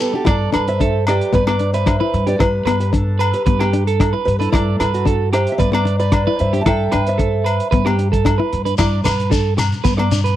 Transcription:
Already playing: steel-string acoustic guitar G3
0.00 steel-string acoustic guitar G4 B4, clean electric guitar A4, closed hi-hat, shekere
0.14 nylon-string guitar D4, steel-string acoustic guitar F#4 A4, clean electric guitar G4
0.25 upright bass G2, steel-string acoustic guitar D4, nylon-string guitar E4, clean electric guitar D5, kick, cross-stick, closed hi-hat, low agogo
0.29 steel-string acoustic guitar A4
0.53 upright bass G2, nylon-string guitar D4, clean electric guitar B4, cross-stick, closed hi-hat, low agogo
0.68 steel-string acoustic guitar C5 E5, closed hi-hat
0.80 nylon-string guitar D4, clean electric guitar A4, kick, closed hi-hat
1.07 clean electric guitar G4, steel-string acoustic guitar B4 D5, cross-stick, closed hi-hat, low agogo
1.21 closed hi-hat
1.33 upright bass G2, nylon-string guitar B3, steel-string acoustic guitar B4 D5, clean electric guitar B4, kick, closed hi-hat
1.47 nylon-string guitar B3, clean electric guitar D5, cross-stick, low agogo
1.59 nylon-string guitar D4, closed hi-hat
1.73 clean electric guitar B4, steel-string acoustic guitar C5 E5, closed hi-hat
1.86 nylon-string guitar D4, kick, cross-stick, closed hi-hat, low agogo
2.00 nylon-string guitar E4, clean electric guitar B4
2.14 upright bass G2, closed hi-hat
2.27 nylon-string guitar D4, clean electric guitar G4, steel-string acoustic guitar B4 D5, closed hi-hat
2.39 upright bass G2, nylon-string guitar E4, steel-string acoustic guitar G4 B4, muted clean electric guitar stroke, kick, cross-stick, closed hi-hat, low agogo
2.65 upright bass G2, nylon-string guitar B3, clean electric guitar B4, cross-stick, closed hi-hat, low agogo
2.80 steel-string acoustic guitar G4 B4, closed hi-hat
2.93 nylon-string guitar D4, steel-string acoustic guitar D4 A4, kick, closed hi-hat
3.19 clean electric guitar B4, closed hi-hat, low agogo
3.33 steel-string acoustic guitar G4 B4, closed hi-hat
3.46 upright bass G2, nylon-string guitar B3, clean electric guitar B4, kick, closed hi-hat
3.59 nylon-string guitar B3, clean electric guitar G4, cross-stick, low agogo
3.73 nylon-string guitar D4, closed hi-hat
3.87 clean electric guitar A4, closed hi-hat
4.00 nylon-string guitar D4, kick, cross-stick, closed hi-hat, low agogo
4.13 nylon-string guitar E4, clean electric guitar B4
4.25 upright bass G2, steel-string acoustic guitar G4 B4, closed hi-hat
4.39 nylon-string guitar D4, steel-string acoustic guitar E4 A4, clean electric guitar B4, closed hi-hat
4.53 upright bass G2, nylon-string guitar E4, clean electric guitar D5, kick, cross-stick, closed hi-hat, low agogo
4.80 upright bass G2, clean electric guitar B4, cross-stick, closed hi-hat, low agogo
4.94 steel-string acoustic guitar F#4 A4, closed hi-hat
5.05 nylon-string guitar D4, clean electric guitar A4, kick, closed hi-hat
5.33 clean electric guitar G4, steel-string acoustic guitar C5 E5, cross-stick, closed hi-hat, low agogo
5.47 closed hi-hat
5.52 steel-string acoustic guitar E5
5.58 upright bass G2, nylon-string guitar B3, steel-string acoustic guitar B4 D5, clean electric guitar B4, kick, closed hi-hat
5.72 nylon-string guitar B3, clean electric guitar D5, cross-stick, low agogo
5.85 muted nylon-string guitar stroke, closed hi-hat
6.00 clean electric guitar B4, steel-string acoustic guitar B4 D5, closed hi-hat
6.12 nylon-string guitar D4, kick, cross-stick, closed hi-hat, low agogo
6.27 nylon-string guitar E4, clean electric guitar B4
6.39 upright bass G2, steel-string acoustic guitar C5 E5, closed hi-hat
6.53 nylon-string guitar D4, clean electric guitar G4, closed hi-hat
6.61 steel-string acoustic guitar A5
6.66 upright bass G2, nylon-string guitar E4, clean electric guitar A4, steel-string acoustic guitar E5 G5, kick, cross-stick, closed hi-hat, low agogo
6.92 upright bass G2, nylon-string guitar D4, clean electric guitar B4, cross-stick, closed hi-hat, low agogo
7.07 steel-string acoustic guitar C5 E5, closed hi-hat
7.18 nylon-string guitar D4, clean electric guitar A4, kick, closed hi-hat
7.44 clean electric guitar B4, closed hi-hat, low agogo
7.60 closed hi-hat
7.71 upright bass G2, nylon-string guitar B3, clean electric guitar B4, kick, closed hi-hat
7.85 nylon-string guitar B3, clean electric guitar G4, cross-stick, low agogo
7.99 nylon-string guitar D4, closed hi-hat
8.12 clean electric guitar A4, kick, closed hi-hat
8.25 nylon-string guitar D4, kick, cross-stick, closed hi-hat, low agogo
8.38 nylon-string guitar E4, clean electric guitar B4
8.53 upright bass G2, closed hi-hat
8.65 nylon-string guitar D4, clean electric guitar B4, closed hi-hat
8.78 upright bass G2, nylon-string guitar E4, clean electric guitar D5, kick, cross-stick, closed hi-hat, low agogo, shekere
9.04 upright bass G2, clean electric guitar B4, muted nylon-string guitar stroke, cross-stick, closed hi-hat, low agogo, shekere
9.20 closed hi-hat
9.31 nylon-string guitar D4, clean electric guitar A4, kick, closed hi-hat, shekere
9.57 muted clean electric guitar stroke, cross-stick, closed hi-hat, low agogo, shekere
9.72 closed hi-hat, shekere
9.84 upright bass G2, nylon-string guitar B3, clean electric guitar B4, kick, closed hi-hat, shekere
9.97 nylon-string guitar B3, clean electric guitar D5, cross-stick, low agogo
10.11 nylon-string guitar D4, closed hi-hat, shekere
10.24 clean electric guitar B4, closed hi-hat, shekere

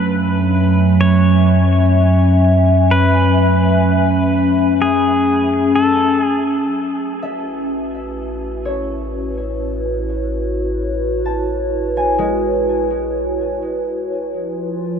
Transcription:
Already playing: synth drone F#2, ambient pad F#3 A3 C#4 E5 G#5, pedal steel guitar B4
1.01 pedal steel guitar C#5
2.91 pedal steel guitar B4
4.82 pedal steel guitar G#4
5.76 pedal steel guitar A4
6.23 pedal steel guitar G#4
6.70 synth drone A1
7.06 ambient pad F#4 B4
7.11 ambient pad E4
7.22 harp E5
8.65 harp C#5
9.14 ambient pad C#5
11.25 harp A5
11.97 harp G#5
12.18 harp G#3
14.31 synth drone F2, ambient pad F3
14.42 ambient pad F4

